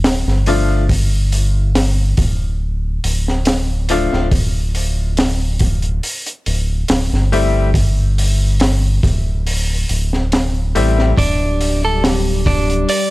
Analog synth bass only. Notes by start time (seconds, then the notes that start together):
0.03 D1
0.27 G1
2.18 D1
3.04 D1
4.13 D1
4.32 D1
6.47 D1
6.89 D1
7.12 G1
9.03 D1
9.89 D1
10.75 A1
11.17 D1